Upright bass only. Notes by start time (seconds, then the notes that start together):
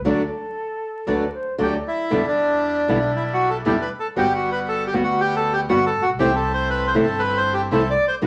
0.05 D2
1.07 D2
1.59 D2
2.11 E2
2.88 B1
3.65 E2
4.16 G1
4.92 D2
5.69 G1
6.00 A1
6.07 A#1
6.14 B1
6.19 C2
6.95 G1
7.71 C2
8.23 B1